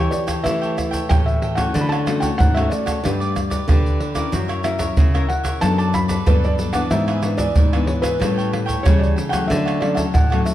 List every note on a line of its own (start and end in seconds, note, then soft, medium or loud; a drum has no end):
0.00 0.42 E3 medium
0.00 0.40 E4 medium
0.00 0.40 G4 medium
0.00 0.28 A4 medium
0.00 0.27 C#5 medium
0.00 0.40 C#5 medium
0.00 0.25 G5 medium
0.11 0.18 D5 medium
0.11 pandeiro medium
0.11 shaker medium
0.27 0.44 A4 medium
0.27 0.43 C#5 medium
0.27 0.43 G5 medium
0.27 pandeiro medium
0.27 tamborim medium
0.27 shaker medium
0.27 surdo soft
0.44 1.00 E3 medium
0.44 1.07 A3 medium
0.44 0.87 E4 medium
0.44 0.60 G4 soft
0.44 0.88 G4 medium
0.44 0.61 A4 soft
0.44 0.61 C#5 medium
0.44 0.88 C#5 medium
0.44 1.11 E5 loud
0.44 0.60 G5 medium
0.44 pandeiro medium
0.44 tamborim medium
0.44 shaker medium
0.44 surdo medium
0.62 0.77 A4 medium
0.62 0.77 C#5 medium
0.62 0.76 G5 medium
0.62 pandeiro soft
0.62 shaker soft
0.77 muted cavaquinho stroke soft
0.77 pandeiro medium
0.77 tamborim medium
0.77 shaker medium
0.77 surdo soft
0.91 1.08 A4 medium
0.91 1.08 C#5 medium
0.91 1.07 G5 medium
0.91 pandeiro medium
0.91 shaker medium
0.91 surdo soft
1.09 1.65 A2 medium
1.09 1.71 E3 medium
1.09 1.53 E4 medium
1.09 1.41 G4 medium
1.09 1.53 G4 medium
1.09 1.41 A4 medium
1.09 1.41 C#5 medium
1.09 1.54 C#5 medium
1.09 1.14 G5 loud
1.09 1.42 G5 medium
1.09 pandeiro medium
1.09 tamborim medium
1.09 shaker medium
1.09 surdo loud
1.26 1.56 E5 medium
1.26 pandeiro soft
1.26 shaker soft
1.42 1.57 G4 soft
1.42 1.57 A4 medium
1.42 1.57 C#5 soft
1.42 1.55 G5 medium
1.42 pandeiro medium
1.55 2.01 A3 medium
1.55 2.01 C#4 medium
1.55 2.01 F#4 medium
1.55 1.73 A4 medium
1.55 1.73 C#5 medium
1.55 1.80 F#5 medium
1.55 1.72 G5 medium
1.55 pandeiro medium
1.55 tamborim medium
1.55 shaker medium
1.55 surdo soft
1.75 2.36 D3 medium
1.75 1.90 D4 soft
1.75 1.90 A4 medium
1.75 1.90 C#5 medium
1.75 1.90 F#5 soft
1.75 pandeiro medium
1.75 shaker medium
1.75 surdo medium
1.81 1.89 B5 medium
1.89 2.06 F#5 medium
1.89 1.96 A5 loud
1.89 pandeiro soft
1.89 tamborim medium
1.89 shaker soft
1.93 2.07 A4 medium
1.93 2.07 C#5 medium
2.07 2.50 A3 medium
2.07 2.51 C#4 medium
2.07 2.51 F#4 medium
2.07 pandeiro medium
2.07 tamborim medium
2.07 shaker medium
2.20 2.38 A4 medium
2.20 2.38 C#5 medium
2.20 2.37 F#5 medium
2.20 2.25 G5 medium
2.20 pandeiro medium
2.20 shaker medium
2.20 surdo soft
2.38 2.66 G#2 medium
2.38 2.54 D4 medium
2.38 2.54 A4 medium
2.38 2.55 C#5 medium
2.38 2.55 F#5 loud
2.38 2.55 F#5 medium
2.38 pandeiro medium
2.38 shaker medium
2.38 surdo loud
2.54 2.99 A3 medium
2.54 3.00 C#4 medium
2.54 3.00 F#4 medium
2.54 2.87 A4 medium
2.54 2.86 C#5 medium
2.54 2.70 E5 loud
2.54 2.85 F#5 medium
2.54 pandeiro soft
2.54 tamborim medium
2.54 shaker soft
2.70 3.96 D5 medium
2.70 pandeiro medium
2.70 shaker medium
2.86 3.03 A4 medium
2.86 3.02 C#5 medium
2.86 3.02 F#5 medium
2.86 pandeiro medium
2.86 tamborim medium
2.86 shaker medium
2.86 surdo soft
3.04 3.59 G2 loud
3.04 3.66 G3 medium
3.04 3.19 D4 soft
3.04 3.46 D4 medium
3.04 3.19 G4 medium
3.04 3.46 G4 medium
3.04 3.20 B4 medium
3.04 3.46 B4 medium
3.04 3.19 D5 soft
3.04 pandeiro medium
3.04 tamborim medium
3.04 shaker medium
3.04 surdo medium
3.20 3.34 G4 soft
3.20 3.35 B4 medium
3.20 3.35 D5 medium
3.20 pandeiro soft
3.20 shaker soft
3.35 muted cavaquinho stroke soft
3.35 pandeiro medium
3.35 tamborim medium
3.35 shaker medium
3.35 surdo soft
3.50 3.67 G4 medium
3.50 3.67 B4 medium
3.50 3.66 D5 medium
3.50 pandeiro medium
3.50 shaker medium
3.50 surdo soft
3.69 4.30 D3 medium
3.69 3.99 D4 medium
3.69 4.00 G4 medium
3.69 3.99 G4 medium
3.69 4.00 B4 medium
3.69 4.01 B4 medium
3.69 4.01 D5 medium
3.69 pandeiro medium
3.69 tamborim medium
3.69 shaker medium
3.69 surdo loud
3.86 pandeiro soft
3.86 shaker soft
4.00 4.16 D4 soft
4.00 4.16 G4 medium
4.00 4.15 B4 medium
4.00 4.14 D5 soft
4.00 pandeiro medium
4.15 4.60 C#4 medium
4.15 4.60 E4 medium
4.15 4.32 G4 medium
4.15 4.60 A#4 medium
4.15 4.31 B4 medium
4.15 4.31 D5 medium
4.15 pandeiro medium
4.15 tamborim medium
4.15 shaker medium
4.15 surdo soft
4.32 4.88 F#2 loud
4.32 4.95 F#3 medium
4.32 4.48 F#4 soft
4.32 4.48 A#4 soft
4.32 4.48 C#5 medium
4.32 4.47 E5 medium
4.32 pandeiro medium
4.32 shaker medium
4.32 surdo medium
4.48 4.63 A#4 medium
4.48 4.63 C#5 medium
4.48 4.63 E5 medium
4.48 pandeiro soft
4.48 tamborim medium
4.48 shaker soft
4.63 5.08 C#4 medium
4.63 5.09 E4 medium
4.63 5.09 A#4 medium
4.63 5.31 E5 loud
4.63 muted cavaquinho stroke soft
4.63 pandeiro medium
4.63 tamborim medium
4.63 shaker medium
4.79 4.96 A#4 medium
4.79 4.96 C#5 medium
4.79 4.95 E5 medium
4.79 pandeiro medium
4.79 shaker medium
4.79 surdo soft
4.97 5.60 C#3 medium
4.97 5.13 F#4 soft
4.97 5.13 A#4 medium
4.97 5.13 C#5 medium
4.97 5.13 E5 medium
4.97 pandeiro medium
4.97 shaker medium
4.97 surdo loud
5.14 5.58 C#4 medium
5.14 5.58 E4 medium
5.14 5.58 A#4 medium
5.14 5.45 A#4 medium
5.14 5.43 C#5 medium
5.14 5.42 E5 medium
5.14 pandeiro soft
5.14 tamborim medium
5.14 shaker soft
5.29 5.59 F#5 medium
5.29 pandeiro medium
5.43 5.61 A#4 medium
5.43 5.60 C#5 medium
5.43 5.60 E5 medium
5.43 pandeiro medium
5.43 tamborim medium
5.43 shaker medium
5.43 surdo soft
5.61 6.17 F#2 medium
5.61 6.24 F#3 medium
5.61 6.04 B3 medium
5.61 5.77 D4 medium
5.61 6.04 D4 medium
5.61 5.77 A4 soft
5.61 6.05 A4 medium
5.61 5.78 B4 medium
5.61 5.78 D5 medium
5.61 5.77 A5 loud
5.61 pandeiro medium
5.61 tamborim medium
5.61 shaker medium
5.61 surdo medium
5.78 5.93 A4 medium
5.78 5.93 B4 medium
5.78 5.94 D5 medium
5.78 5.94 A5 medium
5.78 pandeiro soft
5.78 shaker soft
5.94 6.25 B5 loud
5.94 muted cavaquinho stroke soft
5.94 pandeiro medium
5.94 tamborim medium
5.94 shaker medium
5.94 surdo soft
6.08 6.26 A4 medium
6.08 6.25 B4 medium
6.08 6.24 D5 medium
6.08 pandeiro medium
6.08 shaker medium
6.08 surdo soft
6.26 6.82 G2 loud
6.26 6.74 F#3 medium
6.26 6.58 B3 medium
6.26 6.58 D4 medium
6.26 6.58 A4 medium
6.26 6.42 B4 medium
6.26 6.59 B4 medium
6.26 6.59 D5 medium
6.26 pandeiro medium
6.26 tamborim medium
6.26 shaker medium
6.26 surdo loud
6.44 6.52 D5 loud
6.44 pandeiro soft
6.44 shaker soft
6.59 6.74 D4 soft
6.59 6.74 A4 medium
6.59 6.74 B4 medium
6.59 6.73 D5 medium
6.59 pandeiro medium
6.59 shaker medium
6.73 7.18 E3 medium
6.73 7.19 B3 medium
6.73 7.19 D4 medium
6.73 6.91 A4 medium
6.73 6.90 B4 medium
6.73 6.90 D5 medium
6.73 6.78 F#5 loud
6.73 pandeiro medium
6.73 tamborim medium
6.73 shaker medium
6.73 surdo soft
6.91 7.54 G#2 medium
6.91 7.07 D4 medium
6.91 7.07 G#4 medium
6.91 7.07 B4 medium
6.91 7.36 E5 loud
6.91 7.07 E5 medium
6.91 pandeiro medium
6.91 shaker medium
6.91 surdo medium
7.08 7.22 G#4 medium
7.08 7.23 B4 medium
7.08 7.23 E5 medium
7.08 pandeiro soft
7.08 tamborim medium
7.08 shaker soft
7.23 7.55 E3 medium
7.23 7.55 B3 medium
7.23 7.55 D4 medium
7.23 muted cavaquinho stroke soft
7.23 pandeiro medium
7.23 tamborim medium
7.23 shaker medium
7.38 7.55 G#4 medium
7.38 7.55 B4 medium
7.38 7.84 D5 medium
7.38 7.54 E5 medium
7.38 pandeiro medium
7.38 shaker medium
7.38 surdo soft
7.56 8.18 G#2 medium
7.56 7.71 D4 medium
7.56 7.72 G#4 medium
7.56 7.72 B4 medium
7.56 7.72 E5 medium
7.56 pandeiro medium
7.56 shaker medium
7.56 surdo loud
7.73 8.17 E3 medium
7.73 8.17 B3 medium
7.73 8.17 D4 medium
7.73 8.04 G#4 medium
7.73 8.03 B4 medium
7.73 8.01 E5 medium
7.73 pandeiro soft
7.73 tamborim medium
7.73 shaker soft
7.87 7.92 C#5 medium
7.87 pandeiro medium
8.02 8.20 G#4 medium
8.02 8.87 B4 loud
8.02 8.19 B4 medium
8.02 8.19 E5 medium
8.02 pandeiro medium
8.02 tamborim medium
8.02 shaker medium
8.02 surdo soft
8.21 8.83 A2 medium
8.21 8.63 G3 medium
8.21 8.63 C#4 medium
8.21 8.64 E4 medium
8.21 8.36 G4 medium
8.21 8.36 A4 medium
8.21 8.36 C#5 medium
8.21 8.36 G5 medium
8.21 pandeiro medium
8.21 tamborim medium
8.21 shaker medium
8.21 surdo medium
8.37 8.51 A4 medium
8.37 8.52 C#5 medium
8.37 8.52 G5 medium
8.37 pandeiro soft
8.37 shaker soft
8.52 muted cavaquinho stroke soft
8.52 pandeiro medium
8.52 tamborim medium
8.66 8.84 A4 medium
8.66 8.83 C#5 medium
8.66 8.83 G5 medium
8.66 pandeiro medium
8.66 shaker medium
8.66 surdo soft
8.83 9.40 C#3 loud
8.83 9.47 E3 medium
8.83 9.16 G3 medium
8.83 9.17 C#4 medium
8.83 9.15 G4 medium
8.83 9.15 A4 medium
8.83 8.99 C#5 loud
8.83 9.16 C#5 medium
8.83 9.17 G5 medium
8.83 pandeiro medium
8.83 tamborim medium
8.83 shaker medium
8.83 surdo loud
8.87 9.17 E4 medium
8.99 9.07 D5 medium
9.03 pandeiro soft
9.03 shaker soft
9.16 9.32 G4 soft
9.16 9.31 A4 soft
9.16 9.30 C#5 medium
9.16 9.29 G5 soft
9.16 pandeiro medium
9.16 shaker medium
9.29 9.48 A4 medium
9.29 9.47 C#5 medium
9.29 9.48 F#5 medium
9.29 9.47 G5 medium
9.29 pandeiro medium
9.29 tamborim medium
9.29 shaker medium
9.29 surdo soft
9.33 9.77 F#3 medium
9.33 9.77 A3 medium
9.33 9.77 C#4 medium
9.47 10.12 D3 medium
9.47 9.64 D4 medium
9.47 9.65 A4 medium
9.47 9.65 C#5 medium
9.47 9.82 E5 medium
9.47 9.64 F#5 medium
9.47 pandeiro medium
9.47 shaker medium
9.47 surdo medium
9.65 9.79 A4 medium
9.65 9.79 C#5 medium
9.65 9.80 F#5 medium
9.65 pandeiro soft
9.65 tamborim medium
9.65 shaker soft
9.80 10.13 F#3 soft
9.80 10.13 A3 medium
9.80 10.13 C#4 medium
9.80 9.98 D5 medium
9.80 muted cavaquinho stroke soft
9.80 pandeiro medium
9.80 tamborim medium
9.95 10.12 A4 medium
9.95 10.12 C#5 medium
9.95 10.00 E5 medium
9.95 10.12 F#5 medium
9.95 pandeiro medium
9.95 shaker medium
9.95 surdo soft
10.12 10.54 A2 medium
10.12 10.28 D4 soft
10.12 10.29 A4 medium
10.12 10.29 C#5 soft
10.12 10.48 F#5 medium
10.12 10.29 F#5 medium
10.12 pandeiro medium
10.12 shaker medium
10.12 surdo loud
10.30 10.54 F#3 medium
10.30 10.54 A3 medium
10.30 10.54 A4 medium
10.30 10.54 C#5 medium
10.30 10.54 F#5 medium
10.30 pandeiro soft
10.30 tamborim medium
10.30 shaker soft
10.34 10.54 C#4 medium
10.46 10.51 E5 medium
10.46 pandeiro medium
10.46 shaker medium